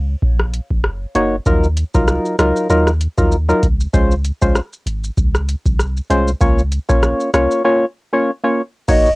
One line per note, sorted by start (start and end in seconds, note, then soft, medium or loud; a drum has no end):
0.00 0.16 C#2 medium
0.22 0.60 A#1 loud
0.22 kick medium
0.40 cross-stick medium
0.54 closed hi-hat medium
0.71 1.05 F#1 medium
0.71 kick medium
0.84 cross-stick medium
1.15 1.39 F#1 medium
1.15 1.36 A#3 medium
1.15 1.36 D#4 medium
1.15 1.36 F#4 medium
1.15 1.36 C#5 medium
1.15 closed hi-hat medium
1.46 1.84 D#2 loud
1.46 1.67 F#3 medium
1.46 1.67 D#4 medium
1.46 1.67 F4 medium
1.46 1.67 A#4 loud
1.46 kick loud
1.46 shaker medium
1.64 shaker soft
1.77 closed hi-hat medium
1.77 shaker medium
1.94 2.19 C2 loud
1.94 2.35 F#3 medium
1.94 2.36 D#4 medium
1.94 2.36 F4 medium
1.94 2.36 A#4 medium
1.94 kick medium
1.94 shaker medium
2.08 cross-stick medium
2.08 shaker medium
2.25 shaker soft
2.39 2.52 C#2 medium
2.39 2.67 F#3 medium
2.39 2.68 D#4 medium
2.39 2.68 F4 medium
2.39 2.68 A#4 medium
2.39 cross-stick loud
2.39 closed hi-hat medium
2.39 shaker medium
2.56 shaker medium
2.69 3.07 D#2 loud
2.69 2.90 F#3 medium
2.69 2.90 D#4 medium
2.69 2.90 F4 medium
2.69 2.91 A#4 loud
2.69 shaker medium
2.87 cross-stick medium
2.87 shaker medium
3.01 closed hi-hat medium
3.01 shaker medium
3.18 3.53 D#2 medium
3.18 3.36 F#3 medium
3.18 3.36 D#4 medium
3.18 3.36 F4 medium
3.18 3.36 A#4 medium
3.18 kick medium
3.18 shaker medium
3.32 shaker medium
3.49 3.67 F#3 medium
3.49 3.67 D#4 medium
3.49 3.67 F4 medium
3.49 3.67 A#4 medium
3.49 shaker medium
3.63 3.87 C#2 medium
3.63 kick medium
3.63 closed hi-hat medium
3.63 shaker medium
3.80 shaker medium
3.93 4.31 C#2 loud
3.93 4.14 G#3 medium
3.93 4.14 C#4 medium
3.93 4.14 F4 medium
3.93 4.14 C5 loud
3.93 kick loud
3.93 shaker medium
4.11 shaker soft
4.24 closed hi-hat medium
4.24 shaker medium
4.42 4.53 C#2 loud
4.42 4.59 G#3 medium
4.42 4.60 C#4 medium
4.42 4.60 F4 medium
4.42 4.60 C5 medium
4.42 kick medium
4.42 shaker medium
4.55 cross-stick medium
4.55 shaker medium
4.73 shaker medium
4.86 5.10 G#1 medium
4.86 closed hi-hat medium
4.86 shaker medium
5.04 shaker medium
5.17 5.55 C#2 medium
5.17 kick loud
5.17 shaker medium
5.35 cross-stick medium
5.35 shaker medium
5.49 closed hi-hat medium
5.49 shaker medium
5.66 6.00 C2 medium
5.66 kick medium
5.66 shaker medium
5.79 cross-stick medium
5.79 shaker medium
5.97 shaker medium
6.10 6.34 C2 loud
6.10 6.31 G#3 medium
6.10 6.31 C#4 medium
6.10 6.31 F4 medium
6.10 6.31 C5 medium
6.10 closed hi-hat medium
6.10 shaker soft
6.28 shaker medium
6.41 6.79 C#2 loud
6.41 6.61 A#3 medium
6.41 6.62 C#4 medium
6.41 6.62 F4 medium
6.41 6.62 C#5 loud
6.41 kick loud
6.41 shaker medium
6.59 shaker soft
6.72 closed hi-hat medium
6.72 shaker medium
6.89 7.14 A#1 loud
6.89 7.30 A#3 medium
6.89 7.30 C#4 medium
6.89 7.30 F4 medium
6.89 7.31 C#5 medium
6.89 kick medium
6.89 shaker medium
7.03 cross-stick loud
7.03 shaker medium
7.20 shaker medium
7.34 7.47 C2 medium
7.34 7.62 A#3 medium
7.34 7.62 C#4 medium
7.34 7.63 F4 medium
7.34 7.63 C#5 medium
7.34 cross-stick loud
7.34 closed hi-hat medium
7.34 shaker medium
7.51 shaker medium
7.64 7.85 A#3 medium
7.64 7.85 C#4 medium
7.64 7.85 F4 medium
7.64 7.85 C#5 loud
8.13 8.31 A#3 medium
8.13 8.31 C#4 medium
8.13 8.31 F4 medium
8.13 8.31 C#5 medium
8.43 8.61 A#3 medium
8.43 8.62 C#4 medium
8.43 8.62 F4 medium
8.43 8.62 C#5 medium
8.88 9.15 F#1 loud
8.88 9.09 A#3 medium
8.88 9.09 D#4 medium
8.88 9.09 F#4 medium
8.88 9.09 C#5 loud
8.88 9.11 D#5 loud
8.88 kick loud
8.88 crash loud
8.88 shaker medium
9.06 shaker soft